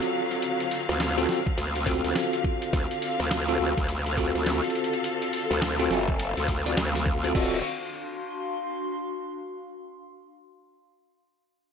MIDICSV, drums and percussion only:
0, 0, Header, 1, 2, 480
1, 0, Start_track
1, 0, Key_signature, -1, "minor"
1, 0, Tempo, 576923
1, 354, Time_signature, 4, 2, 24, 8
1, 9754, End_track
2, 0, Start_track
2, 0, Title_t, "Drums"
2, 19, Note_on_c, 9, 42, 50
2, 103, Note_off_c, 9, 42, 0
2, 260, Note_on_c, 9, 42, 38
2, 343, Note_off_c, 9, 42, 0
2, 352, Note_on_c, 9, 42, 75
2, 435, Note_off_c, 9, 42, 0
2, 502, Note_on_c, 9, 42, 51
2, 585, Note_off_c, 9, 42, 0
2, 593, Note_on_c, 9, 46, 70
2, 676, Note_off_c, 9, 46, 0
2, 741, Note_on_c, 9, 37, 38
2, 741, Note_on_c, 9, 42, 34
2, 824, Note_off_c, 9, 37, 0
2, 824, Note_off_c, 9, 42, 0
2, 833, Note_on_c, 9, 38, 123
2, 833, Note_on_c, 9, 42, 79
2, 916, Note_off_c, 9, 38, 0
2, 916, Note_off_c, 9, 42, 0
2, 981, Note_on_c, 9, 42, 53
2, 1065, Note_off_c, 9, 42, 0
2, 1073, Note_on_c, 9, 38, 60
2, 1156, Note_off_c, 9, 38, 0
2, 1220, Note_on_c, 9, 36, 103
2, 1303, Note_off_c, 9, 36, 0
2, 1313, Note_on_c, 9, 42, 79
2, 1396, Note_off_c, 9, 42, 0
2, 1461, Note_on_c, 9, 42, 49
2, 1544, Note_off_c, 9, 42, 0
2, 1552, Note_on_c, 9, 36, 62
2, 1553, Note_on_c, 9, 46, 71
2, 1635, Note_off_c, 9, 36, 0
2, 1637, Note_off_c, 9, 46, 0
2, 1701, Note_on_c, 9, 42, 34
2, 1785, Note_off_c, 9, 42, 0
2, 1793, Note_on_c, 9, 38, 117
2, 1793, Note_on_c, 9, 42, 75
2, 1876, Note_off_c, 9, 38, 0
2, 1876, Note_off_c, 9, 42, 0
2, 1941, Note_on_c, 9, 42, 49
2, 2024, Note_off_c, 9, 42, 0
2, 2033, Note_on_c, 9, 36, 103
2, 2116, Note_off_c, 9, 36, 0
2, 2180, Note_on_c, 9, 42, 36
2, 2264, Note_off_c, 9, 42, 0
2, 2273, Note_on_c, 9, 36, 119
2, 2274, Note_on_c, 9, 42, 80
2, 2356, Note_off_c, 9, 36, 0
2, 2357, Note_off_c, 9, 42, 0
2, 2422, Note_on_c, 9, 42, 53
2, 2505, Note_off_c, 9, 42, 0
2, 2514, Note_on_c, 9, 46, 66
2, 2597, Note_off_c, 9, 46, 0
2, 2662, Note_on_c, 9, 37, 41
2, 2662, Note_on_c, 9, 42, 36
2, 2746, Note_off_c, 9, 37, 0
2, 2746, Note_off_c, 9, 42, 0
2, 2754, Note_on_c, 9, 38, 123
2, 2754, Note_on_c, 9, 42, 84
2, 2838, Note_off_c, 9, 38, 0
2, 2838, Note_off_c, 9, 42, 0
2, 2902, Note_on_c, 9, 42, 53
2, 2985, Note_off_c, 9, 42, 0
2, 3141, Note_on_c, 9, 36, 105
2, 3142, Note_on_c, 9, 42, 36
2, 3224, Note_off_c, 9, 36, 0
2, 3225, Note_off_c, 9, 42, 0
2, 3233, Note_on_c, 9, 42, 75
2, 3316, Note_off_c, 9, 42, 0
2, 3381, Note_on_c, 9, 42, 54
2, 3465, Note_off_c, 9, 42, 0
2, 3473, Note_on_c, 9, 36, 59
2, 3473, Note_on_c, 9, 46, 67
2, 3556, Note_off_c, 9, 36, 0
2, 3556, Note_off_c, 9, 46, 0
2, 3622, Note_on_c, 9, 42, 35
2, 3705, Note_off_c, 9, 42, 0
2, 3714, Note_on_c, 9, 38, 115
2, 3714, Note_on_c, 9, 42, 77
2, 3798, Note_off_c, 9, 38, 0
2, 3798, Note_off_c, 9, 42, 0
2, 3863, Note_on_c, 9, 42, 23
2, 3910, Note_off_c, 9, 42, 0
2, 3910, Note_on_c, 9, 42, 29
2, 3955, Note_off_c, 9, 42, 0
2, 3955, Note_on_c, 9, 42, 38
2, 4029, Note_off_c, 9, 42, 0
2, 4029, Note_on_c, 9, 42, 43
2, 4104, Note_off_c, 9, 42, 0
2, 4104, Note_on_c, 9, 42, 37
2, 4187, Note_off_c, 9, 42, 0
2, 4195, Note_on_c, 9, 42, 81
2, 4278, Note_off_c, 9, 42, 0
2, 4344, Note_on_c, 9, 42, 52
2, 4427, Note_off_c, 9, 42, 0
2, 4435, Note_on_c, 9, 46, 67
2, 4518, Note_off_c, 9, 46, 0
2, 4584, Note_on_c, 9, 42, 39
2, 4667, Note_off_c, 9, 42, 0
2, 4675, Note_on_c, 9, 38, 122
2, 4675, Note_on_c, 9, 42, 85
2, 4758, Note_off_c, 9, 38, 0
2, 4758, Note_off_c, 9, 42, 0
2, 4823, Note_on_c, 9, 42, 52
2, 4906, Note_off_c, 9, 42, 0
2, 4915, Note_on_c, 9, 38, 62
2, 4998, Note_off_c, 9, 38, 0
2, 5062, Note_on_c, 9, 36, 100
2, 5145, Note_off_c, 9, 36, 0
2, 5154, Note_on_c, 9, 42, 86
2, 5238, Note_off_c, 9, 42, 0
2, 5302, Note_on_c, 9, 42, 54
2, 5386, Note_off_c, 9, 42, 0
2, 5394, Note_on_c, 9, 36, 62
2, 5394, Note_on_c, 9, 46, 66
2, 5477, Note_off_c, 9, 36, 0
2, 5478, Note_off_c, 9, 46, 0
2, 5543, Note_on_c, 9, 42, 39
2, 5626, Note_off_c, 9, 42, 0
2, 5635, Note_on_c, 9, 38, 121
2, 5635, Note_on_c, 9, 42, 82
2, 5718, Note_off_c, 9, 38, 0
2, 5718, Note_off_c, 9, 42, 0
2, 5785, Note_on_c, 9, 42, 52
2, 5868, Note_off_c, 9, 42, 0
2, 5875, Note_on_c, 9, 36, 102
2, 5958, Note_off_c, 9, 36, 0
2, 6025, Note_on_c, 9, 42, 38
2, 6108, Note_off_c, 9, 42, 0
2, 6115, Note_on_c, 9, 36, 115
2, 6115, Note_on_c, 9, 49, 91
2, 6198, Note_off_c, 9, 36, 0
2, 6198, Note_off_c, 9, 49, 0
2, 9754, End_track
0, 0, End_of_file